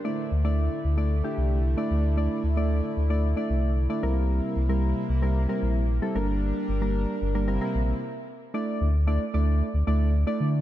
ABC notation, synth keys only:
X:1
M:4/4
L:1/16
Q:1/4=113
K:Cmix
V:1 name="Synth keys"
[A,DEd]2 z [A,DEd]3 z [A,DEd] z [A,DEG]3 z [A,DEd]2 z | [A,DEd]2 z [A,DEd]3 z [A,DEd] z [A,DEd]3 z [A,DEd] [G,CEB]2- | [G,CEB]2 z [G,CEB]3 z [G,CEB] z [G,CEB]3 z [G,CEA] [G,B,DB]2- | [G,B,DB]2 z [G,B,DB]3 z [G,B,DB] [G,CEB] [G,CEB]3 z4 |
[A,DEd]3 z [A,DEd] z [A,DEd]3 z [A,DEd]2 z [A,DEd]2 z |]